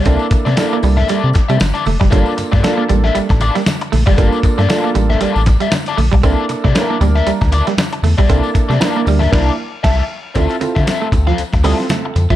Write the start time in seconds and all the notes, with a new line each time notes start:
0.05 C2 A#3 C4 D4 E4 A4 D5, kick, closed hi-hat, tambourine, muted conga
0.19 tambourine
0.31 C3, muted overdriven electric guitar stroke, muted clean electric guitar stroke, kick, closed hi-hat, tambourine, muted conga
0.45 C3 A3 A#3 E4 A4 D5, snare, tambourine
0.57 A#3 D4 E4 A4 D5, muted clean electric guitar stroke, snare, closed hi-hat, tambourine, high conga
0.73 A#3
0.83 C2 G3, muted overdriven electric guitar stroke, open hi-hat, tambourine, muted conga
0.97 A#3 E4 A4 E5, snare, low conga
1.08 G3 A#3 E4 A4 D5, closed hi-hat, tambourine
1.24 C3
1.33 muted overdriven electric guitar stroke, muted clean electric guitar stroke, kick, snare, closed hi-hat, tambourine, muted conga
1.49 C3 G3 A#3 E4 A4 E5, closed hi-hat, tambourine
1.59 G1, muted overdriven electric guitar stroke, muted clean electric guitar stroke, snare, closed hi-hat, tambourine, high conga
1.74 A#3 E4 A4 D5, closed hi-hat
1.85 F1 A3, muted overdriven electric guitar stroke, open hi-hat, tambourine, high conga
2.00 F#1 G3, muted overdriven electric guitar stroke, kick, snare, high conga
2.10 G1 G3 A#3 D4 F4 A4 D5, kick, closed hi-hat, tambourine, muted conga
2.26 tambourine
2.37 G2, muted overdriven electric guitar stroke, muted clean electric guitar stroke, closed hi-hat, tambourine, muted conga
2.52 G2 A3 A#3 F4 A4 D5, kick, snare, tambourine
2.63 A#3 D4 F4 A4 D5, muted clean electric guitar stroke, snare, closed hi-hat, tambourine, high conga
2.77 A#3
2.89 A1 G3, muted overdriven electric guitar stroke, closed hi-hat, tambourine, muted conga, low conga
3.04 A#3 F4 A4 E5, snare
3.15 A1 G3, closed hi-hat, tambourine
3.29 A1, muted overdriven electric guitar stroke, kick, snare, tambourine
3.40 A#3 F4 A4 D5, muted clean electric guitar stroke, closed hi-hat, tambourine, muted conga
3.55 G3, muted overdriven electric guitar stroke, snare, closed hi-hat, tambourine
3.66 muted clean electric guitar stroke, muted overdriven electric guitar stroke, snare, closed hi-hat, tambourine, high conga
3.81 muted overdriven electric guitar stroke, closed hi-hat
3.92 A#1 A3, open hi-hat, tambourine, high conga
4.06 F#1 G3 A#3 F4 A4 D5, kick
4.18 G1 G3 A#3 D4 F4 A4 D5, kick, closed hi-hat, tambourine, muted conga
4.32 tambourine
4.43 G2, muted clean electric guitar stroke, muted overdriven electric guitar stroke, kick, closed hi-hat, tambourine, muted conga
4.58 G2 A3 A#3 F4 A4 D5, snare, tambourine
4.69 A3 A#3 D4 F4 A4 D5, muted clean electric guitar stroke, snare, closed hi-hat, tambourine, high conga
4.76 A#3
4.84 A#3
4.95 A1 G3, muted overdriven electric guitar stroke, closed hi-hat, tambourine, muted conga
5.09 A#3 F4 A4 E5, snare, low conga
5.21 A1 G3 A#3 F4 A4 D5, closed hi-hat, tambourine
5.36 A1, tambourine
5.46 muted clean electric guitar stroke, muted overdriven electric guitar stroke, kick, snare, closed hi-hat, tambourine, muted conga, low conga
5.60 G3 A#3 F4 A4 E5, closed hi-hat, tambourine
5.72 muted clean electric guitar stroke, muted overdriven electric guitar stroke, snare, closed hi-hat, tambourine, high conga
5.86 A#3 F4 A4 D5, closed hi-hat
5.97 A#1 A3, muted overdriven electric guitar stroke, open hi-hat, tambourine, high conga
6.12 B1 G3, muted overdriven electric guitar stroke, kick
6.23 C2 A#3 C4 D4 E4 A4 D5, kick, closed hi-hat, tambourine, muted conga
6.49 C3, muted clean electric guitar stroke, muted overdriven electric guitar stroke, closed hi-hat, tambourine
6.64 C3 A3 A#3 E4 A4 D5, kick, snare
6.75 A#3 D4 E4 A4 D5, muted clean electric guitar stroke, snare, closed hi-hat, tambourine, high conga
6.82 A#4
6.90 A#3
7.01 D2 G3, muted overdriven electric guitar stroke, closed hi-hat, tambourine, muted conga, low conga
7.15 A#3 E4 A4 E5, snare
7.26 D2 G3, closed hi-hat, tambourine
7.41 D2, muted overdriven electric guitar stroke, kick, snare, tambourine
7.52 A#3 E4 A4 D5, muted clean electric guitar stroke, closed hi-hat, tambourine, muted conga
7.67 G3, muted overdriven electric guitar stroke, snare, closed hi-hat
7.78 muted overdriven electric guitar stroke, muted clean electric guitar stroke, snare, closed hi-hat, tambourine, high conga
7.93 muted overdriven electric guitar stroke, closed hi-hat
8.03 E2 A3, open hi-hat, tambourine, high conga
8.18 B1 G3 A#3 E4 A4 D5, kick
8.29 C2 A#3 C4 D4 E4 A4 D5, kick, closed hi-hat, tambourine, muted conga
8.43 tambourine
8.54 C3, muted overdriven electric guitar stroke, muted clean electric guitar stroke, kick, closed hi-hat, tambourine, muted conga
8.69 C3 A3 A#3 E4 A4 D5, snare, tambourine
8.80 A#3 D4 E4 A4 A#4 D5, muted clean electric guitar stroke, snare, closed hi-hat, tambourine, high conga
8.96 A#3
9.05 D2 G3, muted overdriven electric guitar stroke, open hi-hat, tambourine, muted conga
9.19 A#3 E4 A4 E5, snare, low conga
9.31 C2 A#3 D4 E4 A4 A#4 D5, kick, snare, crash
9.83 C2 A#3 E4 A4 E5 A5, kick, snare, crash
10.35 D2 C4 D4 E4 F4 A4 E5, kick, closed hi-hat, tambourine, muted conga
10.49 muted clean electric guitar stroke, closed hi-hat, tambourine
10.61 D3 C4 E4 F4 A4, muted overdriven electric guitar stroke, closed hi-hat, tambourine, muted conga
10.75 D3 C4 F4 A4 E5, kick, snare, tambourine
10.87 C4 F4 A4 E5, snare, closed hi-hat, tambourine, high conga
11.02 A3
11.12 D2, muted overdriven electric guitar stroke, muted clean electric guitar stroke, kick, closed hi-hat, tambourine, muted conga, low conga
11.27 F3 C4 F4 A4 F5, snare
11.38 D2, closed hi-hat, tambourine
11.53 D2, muted overdriven electric guitar stroke, kick, snare, tambourine
11.63 G3 C4 E4 F4 A4 E5, open hi-hat, tambourine, muted conga
11.78 muted overdriven electric guitar stroke, snare, tambourine
11.89 A3, muted overdriven electric guitar stroke, snare, closed hi-hat, tambourine, high conga
12.05 muted overdriven electric guitar stroke
12.16 F2, muted clean electric guitar stroke, closed hi-hat, tambourine, high conga
12.30 C#2 F3 C4 F4 A4 E5, kick, closed hi-hat